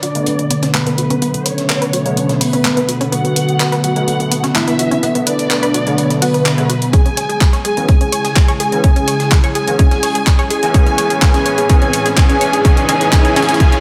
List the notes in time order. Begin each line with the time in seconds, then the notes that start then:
Already playing: B2 D3 F#3
0.03 D4 F#4 D5, closed hi-hat, open hi-hat
0.15 D3 A3 B3, closed hi-hat
0.26 B3, closed hi-hat
0.39 B3, closed hi-hat
0.50 B3, closed hi-hat, open hi-hat
0.62 C#4, snare, closed hi-hat
0.74 A3 B3 B4, snare, clap, closed hi-hat
0.86 B3, snare, closed hi-hat
0.98 F#4, closed hi-hat, open hi-hat
1.10 C#4, closed hi-hat
1.22 B3, closed hi-hat
1.34 B3, closed hi-hat
1.46 C#4 B4 C#5, closed hi-hat, open hi-hat
1.58 snare, closed hi-hat
1.69 B4, snare, clap, closed hi-hat
1.82 B4, closed hi-hat
1.93 F#4, closed hi-hat, open hi-hat
2.06 D3 A3 B3, closed hi-hat
2.17 B3, closed hi-hat
2.29 B3, snare, closed hi-hat
2.41 B3 B4, open hi-hat
2.53 C#4, closed hi-hat
2.65 A3, snare, clap, closed hi-hat
2.77 B3, closed hi-hat
2.88 F#4, closed hi-hat, open hi-hat
3.01 C#4, closed hi-hat
3.12 B3 F#4 F#5, closed hi-hat
3.24 B3, closed hi-hat
3.36 B4, closed hi-hat, open hi-hat
3.49 closed hi-hat
3.60 B4, snare, clap, closed hi-hat
3.72 B4, snare, closed hi-hat
3.84 F#4 F#5, closed hi-hat, open hi-hat
3.96 D3 A3 B3, closed hi-hat
4.08 B3, closed hi-hat
4.20 B3, closed hi-hat
4.31 B3, closed hi-hat, open hi-hat
4.44 C#4, snare, closed hi-hat
4.55 A3 E4 E5, snare, clap, closed hi-hat
4.67 B3, snare, closed hi-hat
4.79 F#4, closed hi-hat, open hi-hat
4.91 C#4, closed hi-hat
5.03 B3, closed hi-hat
5.15 B3, closed hi-hat
5.27 D4 B4 D5, closed hi-hat, open hi-hat
5.39 snare, closed hi-hat
5.50 B4, snare, clap, closed hi-hat
5.63 B4, closed hi-hat
5.74 F#4, closed hi-hat, open hi-hat
5.87 D3 A3 B3, closed hi-hat
5.98 B3, closed hi-hat
6.10 B3, snare, closed hi-hat
6.22 B3 F#4 B4, open hi-hat
6.34 B4, closed hi-hat
6.46 D4, snare, clap, closed hi-hat
6.58 D3 A3 B3 G#4, closed hi-hat
6.69 F#4, closed hi-hat, open hi-hat
6.82 closed hi-hat
6.93 C#3 G#3 C#4 E4 G#4 G#5, kick, closed hi-hat, riser
7.06 C#4, closed hi-hat
7.17 C#5, closed hi-hat, open hi-hat
7.29 G#4, closed hi-hat
7.41 C#5, kick, snare, clap, closed hi-hat
7.53 C#5, snare, closed hi-hat
7.65 G#4 G#5, closed hi-hat, open hi-hat
7.77 E3 B3 C#4, closed hi-hat
7.88 C#4 G#4 G#5, kick, closed hi-hat
8.01 C#4, closed hi-hat
8.12 C#5, closed hi-hat, open hi-hat
8.24 G#4, snare, closed hi-hat
8.36 C#5, kick, snare, clap, closed hi-hat
8.48 C#5, snare, closed hi-hat
8.60 G#4 G#5, closed hi-hat, open hi-hat
8.72 E3 B3 C#4, closed hi-hat
8.84 C#4 G#4 G#5, kick, closed hi-hat
8.96 C#4, closed hi-hat
9.08 C#5, closed hi-hat, open hi-hat
9.20 G#4, snare, closed hi-hat
9.31 C#5, kick, snare, clap, closed hi-hat
9.44 C#5, closed hi-hat
9.55 G#4 G#5, closed hi-hat, open hi-hat
9.67 E3 B3 C#4, closed hi-hat
9.79 C#4 G#4 G#5, kick, closed hi-hat
9.91 C#4, snare, closed hi-hat
10.03 C#5, open hi-hat
10.15 G#4, closed hi-hat
10.27 C#5, kick, snare, clap, closed hi-hat
10.39 C#5, closed hi-hat
10.50 G#4 G#5, closed hi-hat, open hi-hat
10.63 E3 B3 C#4, closed hi-hat
10.74 A2 E3 B3 C#4 G#4 G#5, kick, closed hi-hat
10.86 C#4, closed hi-hat
10.98 C#5, closed hi-hat, open hi-hat
11.10 G#4, closed hi-hat
11.22 E3 B3 C#4 G#4 G#5, kick, snare, clap, closed hi-hat
11.34 C#4, snare, closed hi-hat
11.46 C#5, open hi-hat
11.58 G#4, closed hi-hat
11.69 E3 B3 C#4 G#4 G#5, kick, closed hi-hat
11.82 C#4, closed hi-hat
11.93 C#5, closed hi-hat, open hi-hat
12.06 G#4, snare, closed hi-hat
12.17 E3 B3 C#4 G#4 G#5, kick, snare, clap, closed hi-hat
12.30 C#4, snare, closed hi-hat
12.41 C#5, closed hi-hat, open hi-hat
12.53 G#4, closed hi-hat
12.65 E3 B3 C#4 G#4 G#5, kick, closed hi-hat
12.77 C#4, closed hi-hat
12.89 E3 B3 C#4 G#4 G#5, closed hi-hat, open hi-hat
13.01 C#4, snare, closed hi-hat
13.12 E3 B3 C#4 G#4 G#5, kick, snare, clap, closed hi-hat
13.25 C#4, closed hi-hat
13.36 E3 B3 C#4 G#4 G#5, snare, closed hi-hat, open hi-hat
13.42 snare, closed hi-hat
13.49 C#4, snare, closed hi-hat
13.54 snare, closed hi-hat
13.60 E3 B3 C#4 G#4 G#5, kick, closed hi-hat, reverse cymbal
13.72 C#4, closed hi-hat